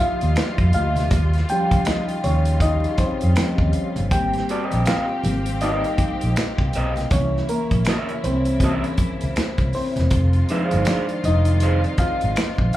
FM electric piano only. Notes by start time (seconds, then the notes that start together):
Already playing: F3 G3 D4 D#4 D5 D#5 E5
0.00 F4 F5
0.74 F4 F5
1.50 F3 G3 C#4 G4 G5
1.86 D#4 D#5
2.24 C#4 C#5
2.62 D#4 D#5
2.99 C4 C5
3.38 F3 G3 C#4
4.12 G3 A#3 C4 G4 G5
4.87 F4 F5
5.25 G3 A#3 C4
5.61 D#4 D#5
7.12 E3 A#3 C#4 C#5
7.49 A#3 A#4
7.87 A#3 A#4
8.24 C4 C5
8.62 E3 A#3 C#4
9.75 C4 C5
10.50 F3 G#3 D#4
10.88 D4 D5
11.25 D#4 D#5
11.99 F4 F5